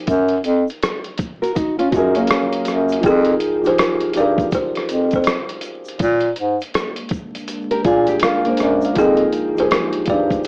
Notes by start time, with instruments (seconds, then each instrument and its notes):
0.07 bass clarinet F#2, kick, closed hi-hat, shaker
0.29 closed hi-hat
0.44 bass clarinet F2, closed hi-hat, shaker
0.68 closed hi-hat, shaker
0.83 cross-stick, closed hi-hat, shaker
1.04 closed hi-hat
1.18 kick, closed hi-hat, shaker
1.42 nylon-string guitar F#4 A#4, closed hi-hat, shaker
1.55 nylon-string guitar D#4 F#4, kick, closed hi-hat, shaker
1.79 nylon-string guitar C#4 F4, closed hi-hat
1.91 bass clarinet F#2, felt piano F#3 F4, nylon-string guitar D#4 F#4, kick, closed hi-hat, shaker
1.96 felt piano G#4 A#4
2.15 nylon-string guitar A#3 C#4, closed hi-hat, shaker
2.27 cross-stick, closed hi-hat, shaker
2.53 closed hi-hat
2.65 bass clarinet F#2, cross-stick, closed hi-hat, shaker
2.89 closed hi-hat, shaker
3.00 felt piano F3 D#4 G5, kick, closed hi-hat
3.04 bass clarinet F2, felt piano G#4 A#4, kalimba G#4, shaker
3.25 closed hi-hat
3.40 closed hi-hat, shaker
3.61 felt piano F3 D#4 G4, shaker
3.66 felt piano G#4 C5, kalimba C5, closed hi-hat
3.78 kalimba A#4, cross-stick, closed hi-hat, shaker
4.00 closed hi-hat
4.13 bass clarinet G2, felt piano F3 D#4 G4, closed hi-hat, shaker
4.17 felt piano G#4 A#4, kalimba D5
4.38 kick, closed hi-hat, shaker
4.52 kalimba C5, kick, closed hi-hat, shaker
4.75 cross-stick, closed hi-hat
4.89 bass clarinet F2, closed hi-hat, shaker
5.11 kick, closed hi-hat, shaker
5.16 kalimba C5
5.24 cross-stick, closed hi-hat, shaker
5.49 closed hi-hat
5.61 closed hi-hat, shaker
5.85 closed hi-hat, shaker
5.99 bass clarinet A#2, ambient pad G#3 A#3 D4, kick, closed hi-hat, shaker
6.21 closed hi-hat
6.36 bass clarinet G#2, closed hi-hat, shaker
6.61 closed hi-hat, shaker
6.74 cross-stick, closed hi-hat, shaker
6.96 closed hi-hat
7.09 kick, closed hi-hat, shaker
7.35 closed hi-hat, shaker
7.48 closed hi-hat, shaker
7.71 nylon-string guitar G4 A#4, closed hi-hat
7.85 bass clarinet A#2, nylon-string guitar F4 G#4, felt piano G#5, kick, closed hi-hat, shaker
8.07 nylon-string guitar G4, felt piano G#4, closed hi-hat, shaker
8.20 nylon-string guitar D4 F4, felt piano F5, cross-stick, closed hi-hat, shaker
8.24 felt piano A#4
8.45 nylon-string guitar A#3 D4, closed hi-hat
8.49 felt piano C5
8.57 bass clarinet F#2, cross-stick, closed hi-hat, shaker
8.61 felt piano D5
8.82 felt piano F5, closed hi-hat, shaker
8.94 bass clarinet F2, felt piano F3 D#4 G5, ambient pad F3 D#4 A#4 C5 G5, kick, closed hi-hat
8.98 kalimba G#4, felt piano G#4 A#4, shaker
9.17 closed hi-hat
9.32 closed hi-hat, shaker
9.55 felt piano F3 D#4 G4, closed hi-hat, shaker
9.60 felt piano G#4 A#4, kalimba C5
9.71 kalimba A#4, cross-stick, closed hi-hat, shaker
9.93 closed hi-hat
10.06 bass clarinet G2, felt piano F3 D#4 G4, kick, closed hi-hat, shaker
10.10 felt piano G#4 C5, kalimba D5
10.30 kick, closed hi-hat, shaker
10.44 shaker